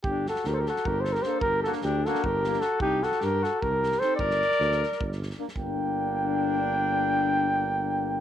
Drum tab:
SD |--ooo-oo--ooo-|--ooo-oo--ooo-|--ooo-o---ooo-|-ooooooo-ooo-o|
BD |o-------o-----|o-------o-----|o-------o-----|o-------o-----|

SD |--------------|--------------|
BD |o-------------|--------------|